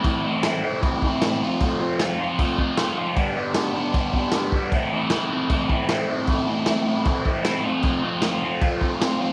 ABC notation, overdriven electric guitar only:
X:1
M:4/4
L:1/8
Q:1/4=154
K:Am
V:1 name="Overdriven electric guitar"
[A,,E,A,CE] [A,,E,A,CE] [A,,E,A,CE] [A,,E,A,CE] [A,,E,A,CE] [A,,E,A,CE] [A,,E,A,CE] [F,A,CF] | [F,A,CF] [F,A,CF] [F,A,CF] [F,A,CF] [F,A,CF] [F,A,CF] [F,A,CF] [F,A,CF] | [G,,D,G,B,D] [G,,D,G,B,D] [G,,D,G,B,D] [G,,D,G,B,D] [G,,D,G,B,D] [G,,D,G,B,D] [G,,D,G,B,D] [G,,D,G,B,D] | [A,,E,A,CE] [A,,E,A,CE] [A,,E,A,CE] [A,,E,A,CE] [A,,E,A,CE] [A,,E,A,CE] [A,,E,A,CE] [A,,E,A,CE] |
[A,,E,A,CE] [A,,E,A,CE] [A,,E,A,CE] [A,,E,A,CE] [A,,E,A,CE] [A,,E,A,CE] [A,,E,A,CE] [F,A,CF] | [F,A,CF] [F,A,CF] [F,A,CF] [F,A,CF] [F,A,CF] [F,A,CF] [F,A,CF] [F,A,CF] |]